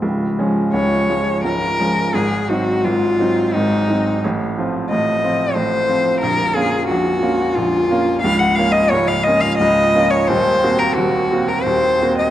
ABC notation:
X:1
M:3/4
L:1/16
Q:1/4=88
K:Db
V:1 name="Cello"
z4 d4 B4 | A2 G2 F4 E4 | z4 e4 c4 | B2 A2 G4 F4 |
[K:Bbm] f g f e d f e f e3 d | c3 B G3 B c3 e |]
V:2 name="Grand piano" clef=bass
[D,,,D,,]2 [F,A,D]2 [D,,,D,,]2 [F,A,D]2 [D,,,D,,]2 [F,A,D]2 | [A,,,A,,]2 [G,CE]2 [A,,,A,,]2 [G,CE]2 [A,,,A,,]2 [G,CE]2 | [=A,,,=A,,]2 [F,CF]2 [A,,,A,,]2 [F,CF]2 [A,,,A,,]2 [F,CF]2 | [B,,,,B,,,]2 [B,DF]2 [B,,,,B,,,]2 [B,DF]2 [B,,,,B,,,]2 [B,DF]2 |
[K:Bbm] [D,,,D,,]2 [B,DF]2 [D,,,D,,]2 [B,DF]2 [D,,,D,,]2 [B,DF]2 | [E,,,E,,]2 [B,CG]2 [E,,,E,,]2 [B,CG]2 [E,,,E,,]2 [B,CG]2 |]